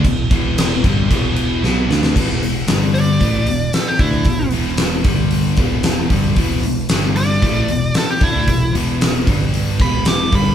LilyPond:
<<
  \new Staff \with { instrumentName = "Lead electric guitar" } { \time 4/4 \key e \minor \tempo 4 = 114 r1 | r4. d''4. a'16 g'16 e'8~ | e'8 r2. r8 | r4. d''4. a'16 g'16 e'8~ |
e'8 r2 b''8 d'''8 b''8 | }
  \new Staff \with { instrumentName = "Distorted electric guitar" } { \clef bass \time 4/4 \key e \minor <e, b,>8 <e, b, e>4 <g, d g>8 <e, b, e>4 <b, fis b>8 <d a d'>8 | <e, b, e>8 <e, b,>8 <g, d g>4 <a, e a>8 <e, b,>8 r8 <d a d'>8 | <e, b,>8 <e, b, e>4 <g, d g>4 <e, b, e>4 <g, d g>8 | <e, b, e>8 <e, b,>8 <g, d g>4 <a, e a>8 <e, b,>8 r8 <d a d'>8 |
<e, b,>8 <e, b, e>4 <g, d g>4 <e, b, e>4 <g, d g>8 | }
  \new Staff \with { instrumentName = "Distorted electric guitar" } { \clef bass \time 4/4 \key e \minor <e, b,>8 <e, b, e>4 <g, d g>8 <e, b, e>4 <b, fis b>8 <d a d'>8 | <e, b, e>8 <e, b,>8 <g, d g>4 <a, e a>8 <e, b,>8 r8 <d a d'>8 | <e, b,>8 <e, b, e>4 <g, d g>4 <e, b, e>4 <g, d g>8 | <e, b, e>8 <e, b,>8 <g, d g>4 <a, e a>8 <e, b,>8 r8 <d a d'>8 |
<e, b,>8 <e, b, e>4 <g, d g>4 <e, b, e>4 <g, d g>8 | }
  \new Staff \with { instrumentName = "Overdriven electric guitar" } { \clef bass \time 4/4 \key e \minor <e, b,>8 <e, b, e>4 <g, d g>8 <e, b, e>4 <b, fis b>8 <d a d'>8 | <e, b, e>8 <e, b,>8 <g, d g>4 <a, e a>8 <e, b,>8 r8 <d a d'>8 | <e, b,>8 <e, b, e>4 <g, d g>4 <e, b, e>4 <g, d g>8 | <e, b, e>8 <e, b,>8 <g, d g>4 <a, e a>8 <e, b,>8 r8 <d a d'>8 |
<e, b,>8 <e, b, e>4 <g, d g>4 <e, b, e>4 <g, d g>8 | }
  \new Staff \with { instrumentName = "Picked electric bass" } { \clef bass \time 4/4 \key e \minor e,,8 e,,4 g,,8 e,,4 b,,8 d,8 | e,,8 e,,8 g,,4 a,,8 e,,8 r8 d,8 | e,,8 e,,4 g,,4 e,,4 g,,8 | e,,8 e,,8 g,,4 a,,8 e,,8 r8 d,8 |
e,,8 e,,4 g,,4 e,,4 g,,8 | }
  \new DrumStaff \with { instrumentName = "Drums" } \drummode { \time 4/4 <cymc bd>8 <cymc bd>8 <cymc sn>8 <cymc bd>8 <cymc bd>8 cymc8 sn8 sn16 sn16 | <cymc bd>8 hho8 <hho sn>8 hho8 <hho bd>8 hho8 <hho sn>8 <hho bd>8 | <hho bd>8 hho8 <hho sn>8 <hho bd>8 hho8 <hho bd>8 <hho sn>8 <hho bd>8 | <hho bd>8 hho8 <hho sn>8 hho8 <hho bd>8 hho8 <hho sn>8 <hho bd>8 |
<hho bd>8 hho8 <hho sn>8 <hho bd>8 hho8 <hho bd>8 <hho sn>8 <hho bd>8 | }
>>